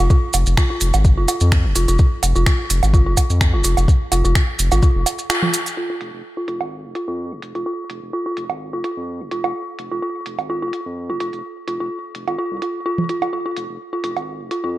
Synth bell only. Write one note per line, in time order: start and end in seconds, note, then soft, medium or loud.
0.10 0.14 F4 medium
0.57 0.63 F4 medium
0.70 0.73 F4 medium
1.17 1.22 F4 medium
1.28 1.32 F4 medium
1.76 1.81 F4 medium
1.88 1.91 F4 medium
2.36 2.40 F4 medium
2.46 2.50 F4 medium
2.94 2.99 F4 medium
3.06 3.09 F4 medium
3.54 3.58 F4 medium
3.64 3.68 F4 medium
4.12 4.17 F4 medium
4.25 4.27 F4 medium
4.72 4.77 F4 medium
4.83 4.86 F4 medium
5.30 5.36 F4 medium
5.43 5.46 F4 medium
5.77 5.83 F4 medium
5.90 5.93 F4 medium
6.37 6.42 F4 medium
6.48 6.51 F4 medium
6.95 7.01 F4 medium
7.08 7.11 F4 medium
7.55 7.60 F4 medium
7.66 7.69 F4 medium
8.13 8.19 F4 medium
8.26 8.29 F4 medium
8.73 8.78 F4 medium
8.84 8.88 F4 medium
9.31 9.37 F4 medium
9.44 9.47 F4 medium
9.91 9.96 F4 medium
10.02 10.06 F4 medium
10.50 10.55 F4 medium
10.62 10.65 F4 medium
11.10 11.14 F4 medium
11.20 11.24 F4 medium
11.68 11.73 F4 medium
11.80 11.83 F4 medium
12.28 12.32 F4 medium
12.38 12.42 F4 medium
12.62 12.68 F4 medium
12.86 12.91 F4 medium
13.09 13.18 F4 medium
13.22 13.27 F4 medium
13.33 13.39 F4 medium
13.46 13.51 F4 medium
13.93 13.98 F4 medium
14.04 14.10 F4 medium
14.51 14.57 F4 medium
14.64 14.69 F4 medium